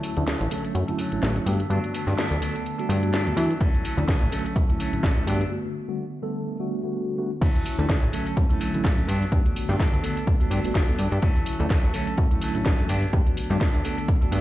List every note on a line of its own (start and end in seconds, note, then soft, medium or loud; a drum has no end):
0.00 0.14 D3 medium
0.00 0.14 F#3 medium
0.00 0.17 F#3 medium
0.00 0.14 A3 medium
0.00 0.14 C#4 medium
0.00 0.14 E4 medium
0.00 open hi-hat loud
0.04 0.17 A3 medium
0.04 0.17 C#4 medium
0.04 0.15 A4 medium
0.17 0.24 D2 loud
0.17 0.32 D3 medium
0.17 0.32 F#3 medium
0.17 0.33 A3 medium
0.17 0.27 A3 soft
0.17 0.33 C#4 medium
0.17 0.27 C#4 medium
0.17 0.33 E4 medium
0.17 0.27 A4 medium
0.17 closed hi-hat soft
0.27 0.49 F#3 medium
0.27 0.50 A3 medium
0.27 0.51 C#4 loud
0.27 0.52 A4 loud
0.27 snare loud
0.27 closed hi-hat medium
0.41 0.48 A1 medium
0.41 closed hi-hat soft
0.51 0.85 D3 medium
0.51 0.64 F#3 medium
0.51 0.85 F#3 medium
0.51 0.85 A3 medium
0.51 0.65 A3 medium
0.51 0.85 C#4 medium
0.51 0.64 C#4 medium
0.51 0.85 A4 loud
0.51 0.63 A4 medium
0.51 open hi-hat loud
0.64 0.89 A3 soft
0.64 0.88 C#4 medium
0.64 0.87 A4 medium
0.64 closed hi-hat soft
0.75 0.84 F#2 medium
0.75 closed hi-hat medium
0.88 1.09 D3 medium
0.88 1.09 F#3 medium
0.88 1.09 A3 medium
0.88 0.98 A3 soft
0.88 1.09 C#4 medium
0.88 0.99 C#4 medium
0.88 1.09 E4 loud
0.88 0.99 A4 medium
0.88 closed hi-hat soft
0.98 1.21 F#3 medium
0.98 1.22 A3 medium
0.98 1.22 C#4 medium
0.98 1.23 A4 medium
0.98 open hi-hat loud
1.12 1.21 A1 soft
1.12 1.44 D3 medium
1.12 1.44 F#3 medium
1.12 1.44 A3 medium
1.12 1.44 C#4 medium
1.12 1.44 E4 medium
1.12 closed hi-hat soft
1.22 1.40 A1 loud
1.22 1.36 F#3 medium
1.22 1.36 A3 medium
1.22 1.36 C#4 loud
1.22 1.34 A4 medium
1.22 snare loud
1.22 closed hi-hat medium
1.36 1.46 A3 medium
1.36 1.47 C#4 medium
1.36 1.46 A4 medium
1.36 closed hi-hat soft
1.46 1.63 G2 loud
1.46 1.58 D3 medium
1.46 1.60 F#3 medium
1.46 1.58 G3 medium
1.46 1.58 A3 medium
1.46 1.58 B3 medium
1.46 1.60 B3 medium
1.46 1.59 D4 medium
1.46 1.58 F#4 medium
1.46 1.58 A4 medium
1.46 open hi-hat loud
1.59 1.69 B3 soft
1.59 1.70 D4 soft
1.59 1.70 A4 medium
1.59 closed hi-hat soft
1.70 1.79 G2 loud
1.70 2.04 D3 medium
1.70 1.92 F#3 medium
1.70 2.04 A3 medium
1.70 2.04 B3 medium
1.70 1.93 B3 medium
1.70 1.94 D4 medium
1.70 2.04 F#4 medium
1.70 1.95 A4 medium
1.70 closed hi-hat medium
1.84 closed hi-hat soft
1.93 2.07 F#3 medium
1.93 2.08 B3 medium
1.93 2.07 D4 medium
1.93 2.06 A4 medium
1.93 open hi-hat loud
2.07 2.14 G2 loud
2.07 2.23 D3 medium
2.07 2.23 G3 medium
2.07 2.23 A3 medium
2.07 2.23 B3 medium
2.07 2.17 B3 medium
2.07 2.18 D4 medium
2.07 2.23 F#4 medium
2.07 2.18 A4 medium
2.07 snare soft
2.07 closed hi-hat soft
2.17 2.40 F#3 medium
2.17 2.41 B3 medium
2.17 2.42 D4 medium
2.17 2.42 A4 loud
2.17 snare loud
2.17 closed hi-hat medium
2.31 2.38 D2 loud
2.31 closed hi-hat soft
2.41 2.76 D3 loud
2.41 2.55 F#3 medium
2.41 2.76 A3 medium
2.41 2.76 B3 medium
2.41 2.55 B3 medium
2.41 2.55 D4 medium
2.41 2.76 A4 loud
2.41 2.54 A4 medium
2.41 open hi-hat loud
2.55 2.80 B3 medium
2.55 2.79 D4 medium
2.55 2.77 A4 medium
2.55 closed hi-hat soft
2.66 closed hi-hat medium
2.78 2.99 D3 medium
2.78 3.00 G3 medium
2.78 3.00 A3 medium
2.78 3.00 B3 medium
2.78 2.89 B3 soft
2.78 2.90 D4 medium
2.78 3.00 F#4 medium
2.78 2.89 A4 medium
2.78 closed hi-hat soft
2.89 3.28 G2 loud
2.89 3.12 F#3 medium
2.89 3.12 B3 medium
2.89 3.13 D4 medium
2.89 3.14 A4 medium
2.89 open hi-hat loud
3.02 3.34 D3 medium
3.02 3.34 A3 medium
3.02 3.34 B3 medium
3.02 3.35 F#4 medium
3.02 closed hi-hat soft
3.13 3.26 F#3 medium
3.13 3.27 B3 medium
3.13 3.26 D4 medium
3.13 3.25 A4 loud
3.13 snare loud
3.13 closed hi-hat medium
3.26 3.33 D2 loud
3.26 3.36 B3 medium
3.26 3.37 D4 medium
3.26 3.37 A4 medium
3.26 closed hi-hat soft
3.36 3.48 D3 medium
3.36 3.54 E3 loud
3.36 3.59 F#3 medium
3.36 3.48 G3 medium
3.36 3.48 A3 medium
3.36 3.48 B3 medium
3.36 3.61 B3 medium
3.36 3.61 D4 medium
3.36 3.48 F#4 loud
3.36 3.61 A4 medium
3.36 open hi-hat loud
3.51 closed hi-hat soft
3.60 3.70 D2 loud
3.60 3.94 D3 medium
3.60 3.94 F#3 medium
3.60 3.83 F#3 medium
3.60 3.95 A3 medium
3.60 3.84 A3 medium
3.60 3.95 C#4 medium
3.60 3.84 C#4 medium
3.60 3.85 A4 medium
3.60 kick loud
3.60 closed hi-hat medium
3.74 closed hi-hat soft
3.84 3.98 F#3 medium
3.84 3.98 A3 medium
3.84 3.97 C#4 medium
3.84 3.96 A4 medium
3.84 open hi-hat loud
3.97 4.05 D2 loud
3.97 4.13 D3 medium
3.97 4.13 F#3 medium
3.97 4.13 A3 medium
3.97 4.07 A3 soft
3.97 4.13 C#4 medium
3.97 4.08 C#4 medium
3.97 4.14 E4 medium
3.97 4.08 A4 medium
3.97 closed hi-hat soft
4.08 4.30 F#3 medium
4.08 4.31 A3 medium
4.08 4.32 C#4 loud
4.08 4.33 A4 loud
4.08 kick loud
4.08 snare loud
4.08 closed hi-hat medium
4.21 4.29 A1 loud
4.21 closed hi-hat soft
4.31 4.66 D3 medium
4.31 4.45 F#3 medium
4.31 4.66 F#3 medium
4.31 4.66 A3 medium
4.31 4.46 A3 medium
4.31 4.66 C#4 medium
4.31 4.45 C#4 medium
4.31 4.66 A4 loud
4.31 4.44 A4 medium
4.31 open hi-hat loud
4.45 4.70 A3 soft
4.45 4.69 C#4 medium
4.45 4.67 A4 medium
4.45 closed hi-hat soft
4.56 4.65 F#2 medium
4.56 kick loud
4.56 closed hi-hat medium
4.69 4.90 D3 medium
4.69 4.90 F#3 medium
4.69 4.90 A3 medium
4.69 4.79 A3 soft
4.69 4.90 C#4 medium
4.69 4.79 C#4 medium
4.69 4.90 E4 loud
4.69 4.79 A4 medium
4.69 closed hi-hat soft
4.79 5.02 F#3 medium
4.79 5.03 A3 medium
4.79 5.03 C#4 medium
4.79 5.04 A4 medium
4.79 open hi-hat loud
4.93 5.01 A1 soft
4.93 5.25 D3 medium
4.93 5.25 F#3 medium
4.93 5.25 A3 medium
4.93 5.25 C#4 medium
4.93 5.25 E4 medium
4.93 closed hi-hat soft
5.03 5.20 A1 loud
5.03 5.17 F#3 medium
5.03 5.17 A3 medium
5.03 5.16 C#4 loud
5.03 5.15 A4 loud
5.03 kick loud
5.03 snare loud
5.03 closed hi-hat medium
5.16 5.27 A3 medium
5.16 5.28 C#4 medium
5.16 5.27 A4 medium
5.16 closed hi-hat soft
5.26 5.44 G2 loud
5.26 5.39 D3 medium
5.26 5.40 F#3 medium
5.26 5.39 G3 medium
5.26 5.39 A3 medium
5.26 5.39 B3 medium
5.26 5.41 B3 medium
5.26 5.40 D4 medium
5.26 5.39 F#4 loud
5.26 5.39 A4 medium
5.26 open hi-hat loud
5.40 5.52 B3 soft
5.40 5.51 D4 medium
5.40 5.51 A4 medium
5.40 closed hi-hat soft
5.51 5.85 D3 medium
5.51 5.85 A3 medium
5.51 5.85 B3 medium
5.51 5.85 F#4 medium
5.88 6.04 D3 medium
5.88 6.04 G3 medium
5.88 6.04 A3 medium
5.88 6.04 B3 medium
5.88 6.04 F#4 medium
6.22 6.57 D3 loud
6.22 6.57 G3 medium
6.22 6.57 A3 medium
6.22 6.57 B3 medium
6.22 6.57 A4 loud
6.59 6.80 D3 medium
6.59 6.80 G3 medium
6.59 6.80 A3 medium
6.59 6.81 B3 medium
6.59 6.81 F#4 loud
6.83 7.15 D3 medium
6.83 7.15 G3 medium
6.83 7.15 A3 medium
6.83 7.15 B3 medium
6.83 7.16 F#4 medium
7.17 7.29 D3 medium
7.17 7.29 G3 medium
7.17 7.29 A3 medium
7.17 7.30 B3 medium
7.17 7.30 F#4 loud
7.41 7.51 D2 loud
7.41 7.79 F#3 medium
7.41 7.76 A3 medium
7.41 7.79 A3 medium
7.41 7.79 C#4 loud
7.41 7.76 E4 medium
7.41 7.77 A4 loud
7.41 kick loud
7.41 closed hi-hat medium
7.41 crash loud
7.41 shaker medium
7.55 closed hi-hat soft
7.55 shaker soft
7.66 open hi-hat loud
7.78 7.86 D2 loud
7.78 7.94 D3 medium
7.78 7.94 F#3 medium
7.78 7.94 A3 medium
7.78 7.88 A3 soft
7.78 7.95 C#4 medium
7.78 7.89 C#4 medium
7.78 7.95 E4 medium
7.78 7.89 A4 medium
7.78 closed hi-hat soft
7.78 shaker medium
7.89 8.11 F#3 medium
7.89 8.12 A3 medium
7.89 8.13 C#4 loud
7.89 8.14 A4 medium
7.89 kick loud
7.89 snare loud
7.89 closed hi-hat medium
7.89 shaker medium
8.03 8.10 A1 loud
8.03 closed hi-hat soft
8.03 shaker soft
8.12 8.47 D3 loud
8.12 8.26 F#3 medium
8.12 8.47 F#3 medium
8.12 8.47 A3 medium
8.12 8.27 A3 medium
8.12 8.47 C#4 medium
8.12 8.26 C#4 medium
8.12 8.47 A4 loud
8.12 8.24 A4 medium
8.12 open hi-hat loud
8.26 8.51 A3 medium
8.26 8.50 C#4 medium
8.26 8.48 A4 medium
8.26 closed hi-hat soft
8.26 shaker medium
8.37 8.46 F#2 medium
8.37 kick loud
8.37 closed hi-hat medium
8.37 shaker medium
8.49 8.71 D3 medium
8.49 8.71 F#3 medium
8.49 8.71 A3 medium
8.49 8.60 A3 medium
8.49 8.71 C#4 medium
8.49 8.60 C#4 medium
8.49 8.71 E4 loud
8.49 8.60 A4 medium
8.49 closed hi-hat soft
8.49 shaker soft
8.60 8.83 F#3 medium
8.60 8.83 A3 medium
8.60 8.84 C#4 medium
8.60 8.85 A4 medium
8.60 open hi-hat loud
8.74 8.83 A1 soft
8.74 8.95 D3 medium
8.74 8.95 F#3 medium
8.74 8.95 A3 medium
8.74 8.95 C#4 medium
8.74 8.95 E4 loud
8.74 closed hi-hat soft
8.74 shaker medium
8.84 9.01 A1 loud
8.84 9.07 F#3 medium
8.84 9.08 A3 loud
8.84 9.09 C#4 loud
8.84 9.09 A4 medium
8.84 kick loud
8.84 snare loud
8.84 closed hi-hat medium
8.84 shaker medium
8.97 9.07 D3 medium
8.97 9.07 F#3 medium
8.97 9.07 A3 medium
8.97 9.07 C#4 medium
8.97 9.07 A4 medium
8.97 closed hi-hat soft
8.97 shaker soft
9.08 9.25 G2 loud
9.08 9.79 F#3 medium
9.08 9.70 B3 medium
9.08 9.70 D4 medium
9.08 9.68 A4 loud
9.08 open hi-hat loud
9.22 closed hi-hat soft
9.22 shaker medium
9.32 9.41 G2 loud
9.32 9.66 D3 medium
9.32 9.66 A3 medium
9.32 9.66 B3 medium
9.32 9.66 F#4 medium
9.32 kick loud
9.32 closed hi-hat medium
9.32 shaker medium
9.46 closed hi-hat soft
9.46 shaker soft
9.56 open hi-hat loud
9.69 9.76 G2 loud
9.69 9.85 D3 medium
9.69 9.85 G3 medium
9.69 9.85 A3 medium
9.69 9.85 B3 medium
9.69 9.79 B3 medium
9.69 9.79 D4 medium
9.69 9.85 F#4 medium
9.69 9.79 A4 medium
9.69 snare soft
9.69 closed hi-hat soft
9.69 shaker medium
9.79 10.02 F#3 medium
9.79 10.03 B3 loud
9.79 10.04 D4 medium
9.79 10.04 A4 loud
9.79 kick loud
9.79 snare loud
9.79 closed hi-hat medium
9.79 shaker medium
9.93 10.00 D2 loud
9.93 closed hi-hat soft
9.93 shaker soft
10.03 10.37 D3 loud
10.03 10.17 F#3 medium
10.03 10.38 A3 medium
10.03 10.38 B3 medium
10.03 10.17 B3 medium
10.03 10.17 D4 medium
10.03 10.38 A4 loud
10.03 10.15 A4 medium
10.03 open hi-hat loud
10.16 10.42 B3 medium
10.16 10.40 D4 medium
10.16 10.39 A4 medium
10.16 closed hi-hat soft
10.16 shaker medium
10.27 kick loud
10.27 closed hi-hat medium
10.27 shaker medium
10.40 10.61 D3 medium
10.40 10.61 G3 medium
10.40 10.61 A3 medium
10.40 10.61 B3 medium
10.40 10.50 B3 soft
10.40 10.51 D4 medium
10.40 10.61 F#4 loud
10.40 10.51 A4 medium
10.40 closed hi-hat soft
10.40 shaker soft
10.50 10.60 G2 loud
10.50 10.73 F#3 medium
10.50 10.74 B3 medium
10.50 10.75 D4 medium
10.50 10.75 A4 medium
10.50 open hi-hat loud
10.64 10.73 G1 soft
10.64 10.85 D3 medium
10.64 10.85 G3 medium
10.64 10.85 A3 medium
10.64 10.85 B3 medium
10.64 10.85 F#4 loud
10.64 open hi-hat medium
10.64 shaker medium
10.75 10.84 G1 medium
10.75 11.12 F#3 loud
10.75 11.12 B3 medium
10.75 11.12 D4 loud
10.75 11.10 A4 medium
10.75 kick loud
10.75 snare loud
10.75 closed hi-hat medium
10.75 shaker medium
10.88 10.97 D3 medium
10.88 10.98 G3 medium
10.88 10.98 A3 medium
10.88 10.98 B3 medium
10.88 10.98 A4 loud
10.88 closed hi-hat soft
10.88 shaker soft
10.98 11.08 G2 loud
10.98 open hi-hat loud
11.11 11.19 G2 medium
11.11 11.22 B3 soft
11.11 11.23 D4 medium
11.11 11.22 A4 medium
11.11 closed hi-hat soft
11.11 shaker medium
11.22 11.32 D2 medium
11.22 11.57 D3 medium
11.22 11.60 F#3 medium
11.22 11.57 F#3 medium
11.22 11.60 A3 medium
11.22 11.57 A3 medium
11.22 11.57 C#4 medium
11.22 11.59 C#4 loud
11.22 11.57 E4 medium
11.22 11.58 A4 loud
11.22 kick loud
11.22 closed hi-hat medium
11.22 shaker medium
11.36 closed hi-hat soft
11.36 shaker soft
11.46 open hi-hat loud
11.59 11.67 D2 loud
11.59 11.75 D3 medium
11.59 11.75 F#3 medium
11.59 11.75 A3 medium
11.59 11.70 A3 medium
11.59 11.75 C#4 medium
11.59 11.70 C#4 medium
11.59 11.75 E4 medium
11.59 11.70 A4 medium
11.59 closed hi-hat soft
11.59 shaker medium
11.70 11.92 F#3 medium
11.70 11.93 A3 loud
11.70 11.94 C#4 loud
11.70 11.95 A4 loud
11.70 kick loud
11.70 snare loud
11.70 closed hi-hat medium
11.70 shaker medium
11.83 11.91 A1 loud
11.83 closed hi-hat soft
11.83 shaker soft
11.93 12.28 D3 medium
11.93 12.07 F#3 medium
11.93 12.28 F#3 medium
11.93 12.28 A3 medium
11.93 12.08 A3 medium
11.93 12.28 C#4 medium
11.93 12.07 C#4 medium
11.93 12.28 A4 loud
11.93 12.06 A4 medium
11.93 open hi-hat loud
12.07 12.32 A3 medium
12.07 12.31 C#4 medium
12.07 12.30 A4 medium
12.07 closed hi-hat soft
12.07 shaker medium
12.18 12.27 F#2 medium
12.18 kick loud
12.18 closed hi-hat medium
12.18 shaker medium
12.31 12.52 D3 medium
12.31 12.52 F#3 medium
12.31 12.52 A3 medium
12.31 12.41 A3 medium
12.31 12.52 C#4 medium
12.31 12.42 C#4 medium
12.31 12.52 E4 loud
12.31 12.41 A4 medium
12.31 closed hi-hat soft
12.31 shaker soft
12.41 12.55 F#3 medium
12.41 12.55 A3 medium
12.41 12.55 C#4 medium
12.41 12.54 A4 medium
12.41 open hi-hat loud
12.54 12.64 A1 soft
12.54 12.75 D3 medium
12.54 12.75 F#3 medium
12.54 12.76 A3 medium
12.54 12.65 A3 soft
12.54 12.76 C#4 medium
12.54 12.65 C#4 medium
12.54 12.76 E4 loud
12.54 12.65 A4 medium
12.54 closed hi-hat soft
12.54 shaker medium
12.65 12.83 A1 loud
12.65 12.88 F#3 medium
12.65 12.89 A3 medium
12.65 12.90 C#4 medium
12.65 12.90 A4 medium
12.65 kick loud
12.65 snare loud
12.65 closed hi-hat medium
12.65 shaker medium
12.78 12.88 D3 medium
12.78 12.88 F#3 medium
12.78 12.88 A3 medium
12.78 12.88 C#4 medium
12.78 12.88 A4 loud
12.78 closed hi-hat soft
12.78 shaker soft
12.89 13.06 G2 loud
12.89 13.60 F#3 medium
12.89 13.51 B3 medium
12.89 13.51 D4 medium
12.89 13.49 A4 medium
12.89 open hi-hat loud
13.03 closed hi-hat soft
13.03 shaker medium
13.13 13.22 G2 loud
13.13 13.47 D3 medium
13.13 13.47 A3 medium
13.13 13.47 B3 medium
13.13 13.48 F#4 medium
13.13 kick loud
13.13 closed hi-hat medium
13.13 shaker medium
13.27 closed hi-hat soft
13.27 shaker soft
13.37 open hi-hat loud
13.50 13.57 G2 loud
13.50 13.66 D3 medium
13.50 13.66 G3 medium
13.50 13.66 A3 medium
13.50 13.66 B3 medium
13.50 13.60 B3 soft
13.50 13.61 D4 medium
13.50 13.66 F#4 medium
13.50 13.61 A4 medium
13.50 snare soft
13.50 closed hi-hat soft
13.50 shaker medium
13.61 13.83 F#3 loud
13.61 13.84 B3 loud
13.61 13.85 D4 loud
13.61 13.85 A4 loud
13.61 kick loud
13.61 snare loud
13.61 closed hi-hat medium
13.61 shaker medium
13.74 13.81 D2 loud
13.74 closed hi-hat soft
13.74 shaker soft
13.84 14.18 D3 loud
13.84 13.98 F#3 medium
13.84 14.19 A3 medium
13.84 14.19 B3 medium
13.84 13.98 B3 medium
13.84 13.98 D4 medium
13.84 14.19 A4 loud
13.84 13.96 A4 medium
13.84 open hi-hat loud
13.98 14.23 B3 soft
13.98 14.22 D4 medium
13.98 14.20 A4 medium
13.98 closed hi-hat soft
13.98 shaker medium
14.08 kick loud
14.08 closed hi-hat medium
14.08 shaker medium
14.21 14.41 D3 medium
14.21 14.41 G3 medium
14.21 14.41 A3 medium
14.21 14.41 B3 medium
14.21 14.31 B3 medium
14.21 14.32 D4 medium
14.21 14.41 F#4 medium
14.21 14.32 A4 medium
14.21 closed hi-hat soft
14.21 shaker soft
14.32 14.41 G2 loud
14.32 14.41 F#3 medium
14.32 14.41 B3 medium
14.32 14.41 D4 medium
14.32 14.41 A4 medium
14.32 open hi-hat loud